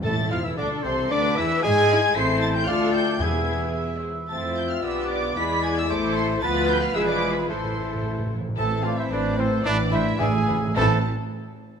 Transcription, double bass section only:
\new Staff \with { instrumentName = "Double bass section" } { \clef bass \time 2/4 \key a \minor \tempo 4 = 112 a,8 f,16 e,16 d,8 c,8 | d,8 e,8 gis,4 | a,,4 d,4 | e,4. r8 |
f,4 b,,4 | e,4 a,,4 | d,4 e,,4 | a,,4. r8 |
a,,4 a,,4 | a,,4 a,,4 | a,,8 r4. | }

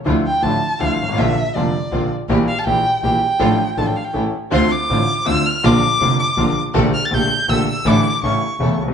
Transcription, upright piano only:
\new Staff \with { instrumentName = "Upright piano" } { \clef bass \time 3/4 \key d \minor \tempo 4 = 161 <d, d f a e'>8 r8 <a,, a, d f a e'>8 r8 <d, d f a e'>8 r32 g,,32 gis,,32 a,,32 | <bes,, bes, d f bes f'>8 r8 <f,, f, d f bes f'>8 r8 <bes,, bes, d f bes f'>8 r8 | <bes,, bes, e g bes g'>8 r8 <bes,, bes, e g bes g'>8 r8 <bes,, bes, e g bes g'>8 r8 | <a,, a, f a d' a'>8 r8 <a,, a, f a d' a'>8 r8 <a,, a, e a cis' a'>8 r8 |
<d, d a c' f'>8 r8 <a,, a, d a c' f'>8 r8 <d, d a c' f'>8 r8 | <bes,, bes, d f bes f'>8 r8 <f,, f, d f bes f'>8 r8 <bes,, bes, d f bes f'>8 r8 | <bes,, bes, d a bes g'>8 r8 <bes,, bes, d a bes g'>8 r8 <bes,, bes, d a bes g'>8 r8 | <a,, a, d e a e'>8 r8 <a,, a, cis e a e'>8 r8 <e,, e, cis e a e'>8 r32 b,,32 c,32 r32 | }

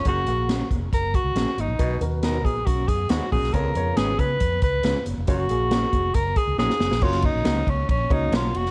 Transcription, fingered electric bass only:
\new Staff \with { instrumentName = "Fingered electric bass" } { \clef bass \time 4/4 \key fis \major \tempo 4 = 138 fis,,8 ais,,4 eis,,8 fis,,8. cis,16 ais,,16 r16 gis,,16 ais,,16 | b,,8 dis,4 ais,,8 b,,8 fis,8 dis,16 r16 ais,,16 b,,16 | cis,8 eis,8 gis,,8 cis8 eis,8 cis,8 cis,16 r16 fis,,16 eis,,16 | fis,,8 ais,,4 eis,,8 fis,,8 r16 cis,16 ais,,16 r16 fis,,16 ais,,16 |
fis,,8. ais,,16 cis,8 cis,8 ais,,8 cis,8 b,,8 eis,,8 | }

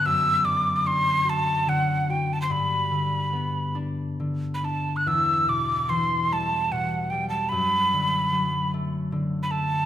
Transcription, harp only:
\new Staff \with { instrumentName = "Harp" } { \clef bass \time 3/4 \key d \mixolydian \tempo 4 = 73 fis,8 d8 d'8 fis'8 d8 fis'8 | g,8 d8 b8 d'8 d8 d'8 | e,8 b,8 e8 g8 b,8 g8 | fis,8 d8 fis8 a8 d8 a8 | }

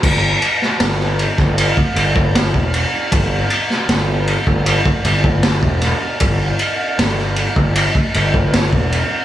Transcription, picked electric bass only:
\new Staff \with { instrumentName = "Picked electric bass" } { \clef bass \time 4/4 \key e \dorian \tempo 4 = 78 g,,8 r8 g,,8. g,,8 r16 g,,8. e,,8 r16 | g,,8 r8 g,,8. g,,8 r16 g,,8. e,,8 r16 | g,,8 r8 g,,8. g,,8 r16 g,,8. e,,8 r16 | }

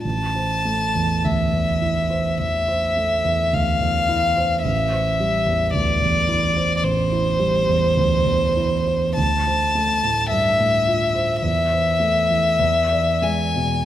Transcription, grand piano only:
\new Staff \with { instrumentName = "Grand piano" } { \clef bass \time 4/4 \key a \minor \tempo 4 = 53 a,,16 c''16 a16 e,16 d,16 e,16 e'16 c''16 e,16 c''16 a16 e,16 d,16 e,16 e'16 c''16 | a,,16 c''16 g16 e,16 d,16 e,16 e'16 c''16 a,,16 e'16 g16 e,16 d,16 e,16 e'16 c''16 | d,16 c''16 a16 a,16 g,16 a,16 f'16 c''16 e,16 c''16 a16 e16 e,16 d''16 gis16 b,16 | }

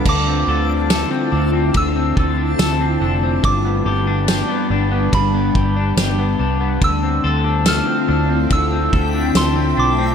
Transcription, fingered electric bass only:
\new Staff \with { instrumentName = "Fingered electric bass" } { \clef bass \time 4/4 \key d \dorian \tempo 4 = 71 d,8 d,8. r16 d,8 d,8 d,8 d,8 f,,8 | g,,8 g,,8. r16 g,,8 g,,8 g,,8 g,,8 c,8 | d,8 d,8. r16 d,8 d,8 d,8 d,8 b,,8 | }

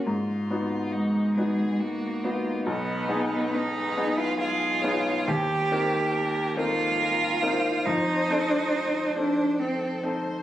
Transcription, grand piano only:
\new Staff \with { instrumentName = "Grand piano" } { \time 3/4 \key gis \dorian \tempo 4 = 69 gis,8 <b dis' fis'>4 <b dis' fis'>4 <b dis' fis'>8 | b,,8 <b dis' gis'>4 <b dis' gis'>4 <b dis' gis'>8 | \key c \dorian ees,8 <c' ees' bes'>4 <c' ees' bes'>4 <c' ees' bes'>8 | f,8 <c' ees' a'>4 <c' ees' a'>4 <c' ees' a'>8 | }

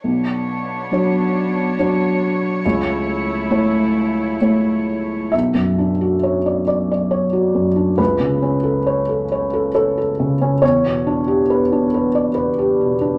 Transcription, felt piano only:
\new Staff \with { instrumentName = "Felt piano" } { \time 3/4 \key b \minor \tempo 4 = 68 << { r2. | r2. | e''4. d''8 cis''4 | b'2 a'4 |
cis''2 b'4 | } \\ { b,,4 <fis d' cis''>4 <fis d' cis''>4 | cis,4 <a e' cis''>4 <a e' cis''>4 | b,,16 fis,16 d'16 fis'16 cis''16 d''8 d''8 fis'16 fis,16 d'16 | cis,16 cis16 cis'16 a'16 cis''16 a'16 cis''16 a'16 cis''16 a'16 cis16 cis'16 |
e,16 b,16 d'16 g'16 b'16 d'16 b'16 d''8 g'16 b,16 d'16 | } >> }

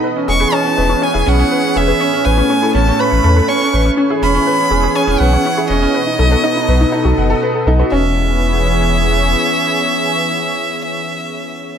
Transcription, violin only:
\new Staff \with { instrumentName = "Violin" } { \time 4/4 \key e \major \tempo 4 = 122 r8 cis'''8 a''4 gis''8 fis''4 e''8~ | e''8 gis''4 a''8 b''4 cis'''8. r16 | r8 b''4. gis''8 fis''4 dis''8~ | dis''2. r4 |
e''1~ | e''1 | }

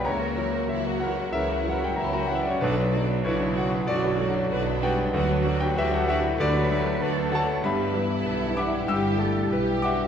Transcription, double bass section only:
\new Staff \with { instrumentName = "Double bass section" } { \clef bass \time 4/4 \key b \minor \tempo 4 = 95 cis,4 cis,4 cis,4 cis,4 | b,,4 b,,4 b,,4 b,,4 | d,4 d,4 d,4 d,4 | \key e \minor g,,4 b,,4 g,,4 b,,4 | }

